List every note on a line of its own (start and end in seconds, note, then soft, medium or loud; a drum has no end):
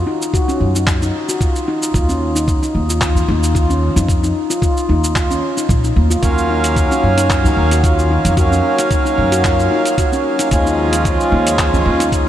0.07 0.32 D#4 medium
0.22 shaker medium
0.34 0.47 F#4 medium
0.34 kick loud
0.34 shaker soft
0.48 0.60 C#4 medium
0.48 shaker soft
0.60 1.08 F#2 medium
0.75 0.87 D#4 medium
0.75 shaker medium
0.87 kick loud
0.87 clap medium
0.87 shaker medium
1.02 1.09 D#4 medium
1.02 shaker soft
1.29 1.36 F#4 medium
1.29 shaker medium
1.41 1.55 F4 medium
1.41 kick loud
1.41 shaker medium
1.56 shaker soft
1.68 1.93 D#4 medium
1.82 shaker medium
1.94 2.56 D#2 medium
1.94 2.07 F4 medium
1.94 kick loud
1.94 shaker medium
2.09 2.21 C#4 medium
2.09 shaker soft
2.36 2.47 D#4 medium
2.36 shaker medium
2.48 kick loud
2.48 shaker medium
2.63 2.70 D#4 medium
2.63 shaker soft
2.75 3.23 D#2 medium
2.90 2.96 F4 medium
2.90 shaker medium
3.01 3.15 F4 medium
3.01 kick loud
3.01 clap medium
3.01 shaker medium
3.15 udu medium
3.15 shaker soft
3.28 3.90 D#2 medium
3.28 3.54 D#4 medium
3.43 shaker medium
3.55 3.68 F4 medium
3.55 kick medium
3.55 shaker medium
3.70 3.81 C#4 medium
3.70 shaker soft
3.96 4.30 F2 medium
3.96 4.08 D#4 medium
3.96 shaker medium
4.09 kick loud
4.09 shaker medium
4.23 4.30 D#4 medium
4.23 shaker soft
4.50 4.57 F4 medium
4.50 shaker medium
4.62 4.76 F4 medium
4.62 kick loud
4.62 shaker medium
4.77 shaker soft
4.89 5.37 D#2 medium
4.89 5.15 D#4 medium
5.04 shaker medium
5.16 5.29 F4 medium
5.16 kick loud
5.16 clap medium
5.16 shaker medium
5.30 5.42 C#4 medium
5.30 shaker soft
5.57 5.69 D#4 medium
5.57 shaker medium
5.69 5.89 A#1 medium
5.69 kick loud
5.69 shaker medium
5.84 5.91 D#4 medium
5.84 shaker soft
5.96 6.16 D#2 medium
6.10 6.18 F4 medium
6.10 shaker medium
6.21 6.85 D#2 loud
6.21 7.80 F#3 loud
6.21 7.80 A#3 loud
6.21 7.81 C#4 loud
6.21 6.37 F4 medium
6.21 7.82 F5 loud
6.21 kick medium
6.21 closed hi-hat soft
6.21 shaker medium
6.38 shaker soft
6.50 6.75 D#4 medium
6.64 closed hi-hat medium
6.64 shaker medium
6.76 6.90 F#4 medium
6.76 kick medium
6.76 closed hi-hat soft
6.76 shaker medium
6.91 7.03 C#4 medium
6.91 shaker soft
7.03 7.51 F#2 medium
7.18 7.30 D#4 medium
7.18 closed hi-hat medium
7.18 shaker medium
7.30 kick loud
7.30 clap medium
7.30 closed hi-hat soft
7.30 shaker medium
7.44 7.52 D#4 medium
7.44 udu medium
7.44 shaker soft
7.57 8.18 D#2 medium
7.71 7.79 F#4 medium
7.71 closed hi-hat soft
7.71 shaker medium
7.82 8.34 F#3 medium
7.82 8.34 A#3 medium
7.82 8.34 C#4 medium
7.82 7.98 F4 medium
7.82 8.35 F5 medium
7.82 kick loud
7.82 closed hi-hat soft
7.82 shaker medium
7.99 shaker soft
8.11 8.36 D#4 medium
8.25 8.58 F2 medium
8.25 closed hi-hat medium
8.25 shaker medium
8.36 9.94 F#3 loud
8.36 9.95 A#3 loud
8.36 9.95 C#4 loud
8.36 8.50 F#4 medium
8.36 9.96 F5 loud
8.36 kick medium
8.36 closed hi-hat soft
8.36 shaker soft
8.52 8.63 C#4 medium
8.52 shaker soft
8.78 8.90 D#4 medium
8.78 closed hi-hat medium
8.78 shaker medium
8.91 kick loud
8.91 closed hi-hat soft
8.91 shaker medium
9.05 9.12 D#4 medium
9.05 shaker soft
9.18 9.66 F#2 medium
9.32 9.39 F#4 medium
9.32 closed hi-hat medium
9.32 shaker medium
9.44 9.58 F4 medium
9.44 kick medium
9.44 clap medium
9.44 closed hi-hat soft
9.44 shaker medium
9.59 shaker soft
9.72 9.97 D#4 medium
9.85 closed hi-hat soft
9.85 shaker medium
9.97 10.48 F#3 medium
9.97 10.48 A#3 medium
9.97 10.49 C#4 medium
9.97 10.11 F#4 medium
9.97 10.49 F5 medium
9.97 kick medium
9.97 closed hi-hat soft
9.97 shaker medium
10.13 10.24 C#4 medium
10.13 shaker soft
10.39 10.51 D#4 medium
10.39 closed hi-hat medium
10.39 shaker medium
10.49 11.13 D#2 medium
10.49 12.08 F3 loud
10.49 12.09 G#3 loud
10.49 12.10 C#4 loud
10.49 kick loud
10.49 closed hi-hat soft
10.49 shaker medium
10.53 12.10 F4 loud
10.66 10.73 D#4 medium
10.66 shaker soft
10.93 11.00 F4 medium
10.93 closed hi-hat medium
10.93 shaker medium
11.05 11.19 F4 medium
11.05 kick medium
11.05 closed hi-hat soft
11.05 shaker soft
11.20 shaker soft
11.32 11.80 D#2 medium
11.32 11.57 D#4 medium
11.47 closed hi-hat medium
11.47 shaker medium
11.59 11.72 F4 medium
11.59 kick medium
11.59 clap medium
11.59 closed hi-hat soft
11.59 shaker soft
11.73 11.85 C#4 medium
11.73 udu medium
11.73 shaker soft
11.86 12.29 D#2 medium
12.00 12.12 D#4 medium
12.00 closed hi-hat medium
12.00 shaker medium
12.11 12.29 F3 medium
12.11 12.29 G#3 medium
12.11 12.29 C#4 medium
12.11 12.29 F4 medium
12.11 kick medium
12.11 closed hi-hat soft
12.11 shaker soft